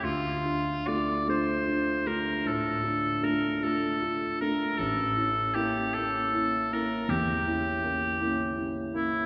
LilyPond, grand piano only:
\new Staff \with { instrumentName = "Grand piano" } { \time 12/8 \key d \minor \tempo 4. = 52 d,8 <d' f'>8 <a d' f'>8 <a d' f'>8 <d' f'>8 <a d' f'>8 a,8 <d' f'>8 <a d' f'>8 <a d' f'>8 <d' f'>8 <a d' f'>8 | a,,8 <cis' e'>8 <bes cis' e'>8 <bes cis' e'>8 <cis' e'>8 <bes cis' e'>8 e,8 <cis' e'>8 <bes cis' e'>8 <bes cis' e'>8 <cis' e'>8 <bes cis' e'>8 | }